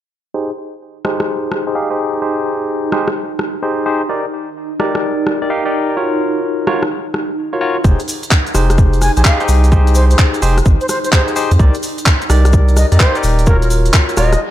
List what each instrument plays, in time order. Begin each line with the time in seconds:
0.34 tine electric piano D#4 G4 G#4 C5, ambient pad D#4
1.05 tine electric piano D#4 G4 G#4 C5, cross-stick
1.20 cross-stick
1.52 cross-stick
1.67 tine electric piano D#4 G4 G#4 C5
1.75 tine electric piano D#4 G4 G#4 F5
1.90 tine electric piano D#4 G4 G#4 C5
2.22 tine electric piano D#4 G4 G#4 C5
2.92 tine electric piano D#4 G4 G#4 C5, cross-stick
3.08 cross-stick
3.39 cross-stick
3.62 tine electric piano D#4 G4 G#4 C5
3.86 tine electric piano D#4 G4 G#4 C5
4.09 tine electric piano D#4 G4 A#4 D5
4.80 tine electric piano D#4 G4 A#4 D5, cross-stick
4.95 cross-stick
5.27 cross-stick
5.42 tine electric piano D#4 G4 A#4 D5
5.50 tine electric piano D#4 G4 A#4 F5
5.65 tine electric piano D#4 G4 A#4 D5
5.97 tine electric piano F4 F#4 A#4 C#5
6.67 tine electric piano F4 F#4 A#4 C#5, cross-stick
6.83 cross-stick
7.14 cross-stick
7.53 tine electric piano F4 F#4 A#4 C#5
7.61 tine electric piano F4 F#4 A#4 C#5
7.84 sub bass F1, tine electric piano D#4 G4 G#4 C5, ambient pad D#4, kick, shaker
7.99 closed hi-hat, shaker
8.08 open hi-hat, shaker
8.23 closed hi-hat, shaker
8.31 kick, clap, shaker
8.47 closed hi-hat, shaker
8.55 sub bass F1, tine electric piano D#4 G4 G#4 C5, cross-stick, open hi-hat, shaker
8.70 cross-stick, closed hi-hat, shaker
8.78 kick, shaker
8.93 closed hi-hat, shaker
9.02 flute G#5, cross-stick, open hi-hat, shaker
9.16 sub bass A#1, tine electric piano D#4 G4 G#4 C5, flute G#5, closed hi-hat, shaker
9.25 tine electric piano D#4 G4 G#4 F5, flute F5, kick, clap, shaker
9.40 tine electric piano D#4 G4 G#4 C5, closed hi-hat, shaker
9.48 sub bass C2, open hi-hat, shaker
9.64 closed hi-hat, shaker
9.72 tine electric piano D#4 G4 G#4 C5, kick, shaker
9.87 closed hi-hat, shaker
9.95 flute C5, open hi-hat, shaker
10.11 flute C5, closed hi-hat, shaker
10.19 kick, clap, shaker
10.34 closed hi-hat, shaker
10.42 sub bass F1, tine electric piano D#4 G4 G#4 C5, open hi-hat, shaker
10.58 cross-stick, closed hi-hat, shaker
10.65 sub bass G#1, kick, shaker
10.81 flute C5, closed hi-hat, shaker
10.89 flute C5, cross-stick, open hi-hat, shaker
11.04 flute C5, closed hi-hat, shaker
11.12 tine electric piano D#4 G4 G#4 C5, flute C5, kick, clap, shaker
11.28 closed hi-hat, shaker
11.36 tine electric piano D#4 G4 G#4 C5, open hi-hat, shaker
11.51 sub bass F2, closed hi-hat, shaker
11.59 sub bass C2, tine electric piano D#4 G4 A#4 D5, kick, shaker
11.74 closed hi-hat, shaker
11.83 open hi-hat, shaker
11.98 closed hi-hat, shaker
12.06 kick, clap, shaker
12.21 closed hi-hat, shaker
12.30 sub bass C2, tine electric piano D#4 G4 A#4 D5, cross-stick, open hi-hat, shaker
12.45 cross-stick, closed hi-hat, shaker
12.53 kick, shaker
12.68 closed hi-hat, shaker
12.76 flute D#5, cross-stick, open hi-hat, shaker
12.92 sub bass F2, tine electric piano D#4 G4 A#4 D5, flute D#5, closed hi-hat, shaker
13.00 tine electric piano D#4 G4 A#4 F5, flute C5, kick, clap, shaker
13.15 tine electric piano D#4 G4 A#4 D5, closed hi-hat, shaker
13.23 sub bass D#1, open hi-hat, shaker
13.39 closed hi-hat, shaker
13.46 tine electric piano F4 F#4 A#4 C#5, flute A#4, kick, shaker
13.62 flute A#4, closed hi-hat, shaker
13.70 open hi-hat, shaker
13.85 closed hi-hat, shaker
13.93 kick, clap, shaker
14.09 closed hi-hat, shaker
14.17 sub bass D#1, tine electric piano F4 F#4 A#4 C#5, flute D#5, cross-stick, open hi-hat, shaker
14.33 cross-stick, closed hi-hat, shaker
14.41 reverse cymbal